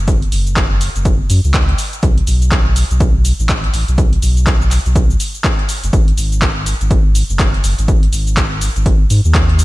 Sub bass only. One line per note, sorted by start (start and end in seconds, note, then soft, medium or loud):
0.00 0.28 F#1 medium
0.32 0.89 F#1 medium
0.96 1.25 F#1 loud
1.30 1.40 F#2 medium
1.44 1.74 C#2 medium
2.03 2.22 B1 loud
2.27 2.84 B1 medium
2.91 3.33 B1 medium
3.40 3.69 A1 medium
3.74 3.84 A1 medium
3.88 4.18 B1 medium
4.22 4.79 B1 loud
4.86 5.16 B1 loud
5.83 5.90 F#1 medium
5.93 6.12 G#1 loud
6.18 6.74 G#1 medium
6.81 7.23 G#1 medium
7.30 7.59 F#1 medium
7.64 7.74 F#1 loud
7.78 8.08 G#1 medium
8.13 8.69 G#1 medium
8.76 9.06 G#1 loud
9.10 9.21 G#2 medium
9.25 9.64 D#2 medium